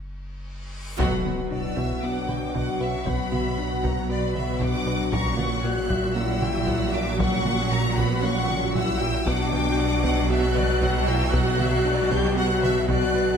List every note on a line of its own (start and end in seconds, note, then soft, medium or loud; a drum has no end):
0.00 0.99 F#1 medium
0.00 reverse cymbal medium
0.99 5.14 B1 medium
0.99 5.09 B1 loud
0.99 5.09 B2 loud
0.99 1.15 B2 loud
0.99 5.09 F#3 loud
0.99 5.09 F#3 medium
0.99 1.14 B3 loud
0.99 1.47 B3 medium
0.99 5.09 F#4 loud
0.99 5.09 F#4 medium
0.99 5.09 B4 loud
0.99 5.09 F#5 loud
0.99 1.47 F#5 medium
0.99 1.48 B5 loud
0.99 taiko loud
0.99 impact medium
1.25 1.41 B3 medium
1.25 1.41 F#4 medium
1.25 taiko mid medium
1.51 1.67 B2 medium
1.51 1.66 D4 medium
1.51 2.03 E4 medium
1.51 1.77 D5 medium
1.51 2.03 E6 loud
1.77 1.93 B2 medium
1.77 1.92 B3 loud
1.77 2.03 E5 medium
1.77 taiko medium
2.02 2.19 B3 medium
2.02 2.79 D4 medium
2.02 2.18 F#4 medium
2.02 2.29 F#5 medium
2.02 2.81 D6 medium
2.29 2.44 B2 medium
2.29 2.44 B4 medium
2.29 2.55 G5 medium
2.29 taiko mid medium
2.54 2.70 B2 loud
2.54 2.70 B3 loud
2.54 2.80 F#5 medium
2.54 taiko medium
2.80 2.96 B2 medium
2.80 3.06 C#4 medium
2.80 2.96 B4 medium
2.80 3.07 E5 medium
2.80 3.06 C#6 medium
3.05 3.21 B2 medium
3.05 3.83 B3 medium
3.05 3.22 B3 loud
3.05 3.32 F#5 medium
3.05 3.84 B5 loud
3.05 taiko medium
3.32 3.48 B3 medium
3.32 3.48 F#4 medium
3.32 3.58 E5 medium
3.32 taiko mid medium
3.57 3.73 B2 medium
3.57 3.74 D4 medium
3.57 4.10 F#5 medium
3.83 3.99 B2 medium
3.83 4.10 A#3 medium
3.83 3.99 B3 loud
3.83 4.10 A#5 medium
3.83 taiko medium
4.09 4.25 B3 medium
4.09 4.61 B3 medium
4.09 4.25 F#4 medium
4.09 4.35 D5 medium
4.09 4.61 B5 loud
4.35 4.51 B2 medium
4.35 4.51 B4 medium
4.35 4.61 E5 medium
4.35 taiko mid medium
4.59 4.76 B2 loud
4.59 4.77 B3 loud
4.59 5.13 D4 loud
4.59 5.13 F#5 medium
4.59 5.12 D6 loud
4.59 taiko medium
4.86 5.02 B2 medium
4.86 5.03 B4 medium
5.12 9.28 A#1 medium
5.12 9.23 A#1 medium
5.12 5.28 A#2 loud
5.12 9.23 A#2 medium
5.12 9.22 F#3 medium
5.12 9.23 F#3 medium
5.12 5.28 F#3 loud
5.12 5.65 C#4 medium
5.12 9.22 F#4 medium
5.12 9.23 F#4 medium
5.12 9.27 C#5 medium
5.12 9.23 F#5 medium
5.12 5.38 A#5 medium
5.12 5.64 C#6 loud
5.12 taiko loud
5.37 5.53 A#3 medium
5.37 5.54 C#4 medium
5.37 5.64 F#5 medium
5.37 taiko mid medium
5.63 5.79 A#2 medium
5.63 5.80 A#3 medium
5.63 6.16 F#4 loud
5.63 5.91 C#5 medium
5.63 6.16 F#6 loud
5.90 6.06 A#2 medium
5.90 6.06 F#3 loud
5.90 6.17 E5 medium
5.90 taiko medium
6.15 6.31 A#3 medium
6.15 6.32 C#4 medium
6.15 6.94 E4 loud
6.15 6.42 F#5 medium
6.15 6.92 E6 loud
6.41 6.57 A#2 medium
6.41 6.58 F#4 medium
6.41 6.68 G5 medium
6.41 taiko mid medium
6.67 6.83 A#2 loud
6.67 6.83 F#3 loud
6.67 6.94 F#5 medium
6.67 taiko medium
6.93 7.09 A#2 medium
6.93 7.20 D4 loud
6.93 7.09 F#4 medium
6.93 7.20 E5 medium
6.93 7.20 D6 loud
7.19 7.35 A#2 loud
7.19 7.35 F#3 loud
7.19 7.81 C#4 loud
7.19 7.71 F#5 loud
7.19 7.96 C#6 loud
7.19 taiko loud
7.45 7.61 A#3 medium
7.45 7.61 C#4 medium
7.45 taiko mid medium
7.71 7.87 A#2 medium
7.71 7.87 A#3 medium
7.71 7.97 A#5 loud
7.97 8.13 A#2 loud
7.97 8.13 F#3 loud
7.97 8.23 B3 medium
7.97 8.74 F#5 loud
7.97 8.23 B5 loud
7.97 taiko medium
8.23 8.39 A#3 medium
8.23 8.39 C#4 medium
8.23 8.75 C#4 loud
8.23 8.75 C#6 loud
8.49 8.65 A#2 medium
8.49 8.64 F#4 medium
8.49 taiko mid medium
8.74 8.91 A#2 loud
8.74 8.91 F#3 loud
8.74 9.26 E4 loud
8.74 9.00 F#5 medium
8.74 9.26 E6 loud
8.74 taiko medium
9.00 9.17 A#2 medium
9.00 9.16 F#4 medium
9.00 9.27 G5 loud
9.26 13.37 B1 medium
9.26 13.37 B1 loud
9.26 13.37 B2 loud
9.26 9.43 B2 loud
9.26 13.37 F#3 loud
9.26 9.42 B3 loud
9.26 10.30 D4 loud
9.26 13.37 F#4 loud
9.26 13.37 F#4 medium
9.26 13.37 B4 loud
9.26 13.37 F#5 loud
9.26 9.52 F#5 loud
9.26 10.30 D6 loud
9.26 taiko loud
9.52 9.69 B3 medium
9.52 9.68 F#4 medium
9.52 9.78 G5 medium
9.52 taiko mid medium
9.78 9.94 B2 medium
9.78 9.94 D4 medium
9.78 10.03 F#5 loud
10.04 10.20 B2 loud
10.04 10.19 B3 loud
10.04 10.30 F#5 loud
10.04 taiko medium
10.29 10.46 B3 medium
10.29 11.06 F#4 loud
10.29 10.45 F#4 medium
10.29 10.56 E5 loud
10.29 11.08 F#6 loud
10.55 10.72 B2 medium
10.55 10.71 B4 medium
10.55 10.83 D5 loud
10.55 taiko mid medium
10.81 10.98 B2 loud
10.81 10.97 B3 loud
10.81 11.08 F#5 loud
10.81 taiko medium
11.07 11.24 B2 medium
11.07 11.33 E4 loud
11.07 11.23 B4 medium
11.07 11.34 G5 loud
11.07 11.33 E6 loud
11.33 11.49 B2 loud
11.33 11.49 B3 loud
11.33 12.11 F#4 loud
11.33 11.59 F#5 loud
11.33 12.12 F#6 loud
11.33 taiko loud
11.59 11.75 B3 medium
11.59 11.75 F#4 medium
11.59 11.86 E5 medium
11.59 taiko mid medium
11.85 12.01 B2 medium
11.85 12.01 D4 medium
11.85 12.38 D5 loud
12.11 12.27 B2 loud
12.11 12.27 B3 loud
12.11 12.37 G4 loud
12.11 12.38 G6 loud
12.11 taiko medium
12.37 12.52 B3 medium
12.37 12.53 F#4 medium
12.37 12.87 F#4 loud
12.37 12.62 F#5 loud
12.37 12.88 F#6 loud
12.63 12.79 B2 medium
12.63 12.78 B4 medium
12.63 12.89 E5 medium
12.63 taiko mid medium
12.88 13.04 B2 loud
12.88 13.04 B3 loud
12.88 13.37 F#4 loud
12.88 13.37 D5 medium
12.88 13.37 F#6 loud
12.88 taiko loud
13.14 13.30 B2 medium
13.14 13.31 B4 medium